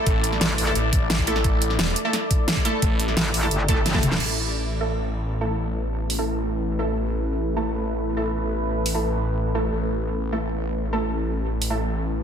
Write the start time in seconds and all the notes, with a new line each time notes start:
Already playing: A3 E4 A4 D5
0.06 A1, kick, closed hi-hat
0.24 closed hi-hat
0.32 snare
0.41 A1, snare, closed hi-hat
0.58 open hi-hat
0.67 A3 E4 A4
0.75 A1, closed hi-hat
0.93 kick, closed hi-hat
1.10 snare, closed hi-hat
1.19 kick
1.27 A3 E4 A4, closed hi-hat
1.36 snare
1.44 A1, kick, closed hi-hat
1.62 closed hi-hat
1.70 snare
1.79 E1, snare, closed hi-hat
1.96 closed hi-hat
2.05 A3 E4 A4
2.13 snare, closed hi-hat
2.31 kick, closed hi-hat
2.48 snare, closed hi-hat
2.56 kick
2.65 A3 E4 A4, closed hi-hat
2.82 A1, kick, closed hi-hat
3.00 closed hi-hat
3.08 snare
3.17 A1, snare, closed hi-hat
3.34 open hi-hat
3.43 A3 E4 A4
3.51 G1, closed hi-hat
3.68 A3 E4 A4, kick, closed hi-hat
3.86 snare, closed hi-hat
3.94 A3 E4 A4, kick, snare
4.03 closed hi-hat, mid tom
4.12 snare
4.20 A1 A3 E4 B4, crash
4.81 A3 E4 A4
5.41 A3 E4 A4
6.10 open hi-hat
6.19 A3 E4 A4
6.79 A3 E4 A4
7.56 A3 E4 A4
8.17 A3 E4 A4
8.86 open hi-hat
8.94 A3 E4 A4
9.55 A3 E4 A4
9.72 A1
10.32 A3 E4 A4
10.93 A3 E4 A4
11.62 open hi-hat
11.70 A3 E4 A4